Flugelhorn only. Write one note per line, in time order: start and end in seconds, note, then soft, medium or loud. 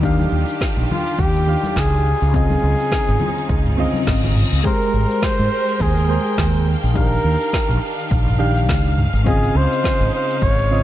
0.91 1.22 F4 medium
1.21 1.80 G4 loud
1.79 2.35 G#4 loud
2.36 4.04 G#4 loud
4.66 5.25 A#4 loud
5.24 5.83 C5 loud
5.82 6.68 G#4 medium
6.96 8.07 A#4 loud
9.27 9.58 G#4 loud
9.56 10.14 C5 loud
10.14 10.44 C5 loud
10.43 10.83 C#5 loud